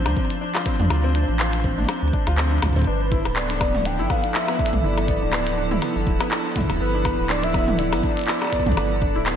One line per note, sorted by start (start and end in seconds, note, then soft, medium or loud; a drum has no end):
0.00 2.83 F3 medium
0.00 2.83 D4 medium
0.00 2.83 C5 loud
0.06 0.15 D2 medium
0.06 0.16 D4 medium
0.06 percussion blips medium
0.17 0.27 C4 medium
0.17 kick loud
0.30 closed hi-hat medium
0.41 0.54 D4 medium
0.55 0.60 F4 loud
0.55 clap loud
0.55 percussion blips soft
0.66 0.76 C4 loud
0.66 kick loud
0.66 closed hi-hat medium
0.79 0.88 F2 loud
0.79 0.90 D4 medium
0.79 mid tom medium
0.90 1.25 D2 loud
0.90 1.03 F4 medium
0.90 percussion blips medium
1.04 1.09 C4 loud
1.15 1.28 D4 medium
1.15 closed hi-hat soft
1.29 1.86 A1 medium
1.40 1.50 F4 medium
1.40 clap loud
1.40 percussion blips soft
1.53 closed hi-hat medium
1.64 1.75 C4 medium
1.64 kick loud
1.78 1.88 D4 medium
1.78 mid tom soft
1.80 mid tom medium
1.82 mid tom medium
1.84 mid tom medium
1.86 1.99 C4 medium
1.86 closed hi-hat medium
1.86 mid tom medium
1.86 percussion blips medium
2.02 2.11 D2 loud
2.13 2.26 D4 medium
2.13 kick loud
2.27 2.59 D2 loud
2.27 2.32 F4 loud
2.27 closed hi-hat soft
2.27 percussion blips medium
2.38 2.48 C4 loud
2.38 clap loud
2.52 2.62 D4 medium
2.62 2.83 D2 loud
2.62 2.76 F4 medium
2.62 kick medium
2.62 closed hi-hat medium
2.62 mid tom medium
2.62 percussion blips medium
2.66 kick medium
2.69 kick medium
2.73 2.81 C4 medium
2.73 kick medium
2.76 kick medium
2.79 kick medium
2.82 kick loud
2.84 3.22 G1 loud
2.84 9.36 F3 medium
2.84 9.36 B3 medium
2.84 3.00 D4 medium
2.84 9.36 E4 medium
2.84 9.36 A4 medium
2.84 3.38 B4 loud
2.84 kick loud
3.12 3.22 E4 medium
3.12 kick loud
3.12 closed hi-hat soft
3.25 4.01 D1 medium
3.25 percussion blips medium
3.36 3.47 B3 medium
3.36 3.87 D5 loud
3.36 clap loud
3.50 3.60 D4 medium
3.50 closed hi-hat medium
3.61 3.71 B3 medium
3.61 kick loud
3.61 percussion blips medium
3.75 mid tom medium
3.77 mid tom medium
3.79 mid tom medium
3.81 mid tom medium
3.83 3.98 D4 medium
3.83 4.05 G5 loud
3.83 closed hi-hat medium
3.83 mid tom soft
3.99 4.08 G1 medium
3.99 4.04 E4 loud
4.05 4.12 G5 medium
4.10 4.21 B3 loud
4.10 4.36 F5 loud
4.10 kick loud
4.10 percussion blips soft
4.24 4.34 D4 medium
4.24 closed hi-hat soft
4.35 4.48 E4 medium
4.35 4.86 E5 loud
4.35 clap loud
4.48 4.53 B3 loud
4.48 percussion blips medium
4.59 4.72 D4 medium
4.59 kick loud
4.66 closed hi-hat medium
4.73 4.82 B1 loud
4.73 mid tom medium
4.84 5.18 G1 loud
4.84 4.94 E4 medium
4.84 6.31 D5 loud
4.98 percussion blips soft
5.08 5.19 B3 medium
5.08 kick loud
5.08 closed hi-hat soft
5.22 5.79 D1 medium
5.22 5.32 D4 medium
5.33 5.44 B3 medium
5.33 clap loud
5.33 percussion blips medium
5.47 closed hi-hat medium
5.58 5.71 D4 medium
5.71 5.76 E4 loud
5.71 mid tom loud
5.82 5.93 B3 loud
5.82 closed hi-hat medium
5.82 percussion blips medium
5.96 6.05 G1 loud
5.96 6.06 D4 medium
6.07 6.18 D1 loud
6.07 6.20 E4 medium
6.07 kick loud
6.21 6.26 B3 loud
6.21 closed hi-hat soft
6.21 percussion blips medium
6.31 6.44 D4 medium
6.31 clap loud
6.56 6.67 E4 medium
6.56 kick medium
6.56 closed hi-hat medium
6.56 mid tom loud
6.61 kick medium
6.64 kick medium
6.70 6.79 D1 medium
6.70 kick medium
6.70 percussion blips medium
6.72 kick soft
6.77 7.15 G1 loud
6.77 6.91 B3 medium
6.77 7.31 B4 loud
6.77 kick soft
6.94 7.05 D4 medium
7.05 7.16 B3 medium
7.05 kick loud
7.05 closed hi-hat medium
7.05 percussion blips medium
7.19 7.94 D1 loud
7.30 7.43 D4 medium
7.30 7.45 D5 loud
7.30 clap loud
7.43 7.48 E4 loud
7.43 7.73 E5 loud
7.43 closed hi-hat medium
7.54 7.65 B3 loud
7.54 kick loud
7.54 percussion blips medium
7.68 7.78 D4 medium
7.68 mid tom loud
7.73 7.80 E5 medium
7.79 7.92 E4 medium
7.79 9.36 D5 loud
7.79 closed hi-hat medium
7.93 8.02 G1 medium
7.93 7.98 B3 loud
7.93 percussion blips medium
8.03 8.17 D4 medium
8.03 kick loud
8.17 closed hi-hat medium
8.19 closed hi-hat soft
8.22 closed hi-hat soft
8.24 closed hi-hat soft
8.26 8.39 E4 medium
8.26 clap loud
8.26 closed hi-hat soft
8.42 percussion blips medium
8.44 percussion blips soft
8.47 percussion blips soft
8.50 8.63 B3 medium
8.50 kick soft
8.50 closed hi-hat medium
8.50 percussion blips soft
8.53 percussion blips soft
8.56 kick medium
8.56 percussion blips soft
8.60 percussion blips soft
8.63 8.75 B1 loud
8.63 8.77 D4 medium
8.63 kick medium
8.63 mid tom medium
8.63 percussion blips soft
8.72 kick loud
8.77 9.12 G1 loud
8.77 8.88 B3 medium
8.77 percussion blips medium
9.02 9.15 D4 medium
9.02 kick loud
9.16 9.36 D1 medium
9.16 9.21 E4 loud
9.26 9.36 B3 loud
9.26 clap loud
9.26 percussion blips medium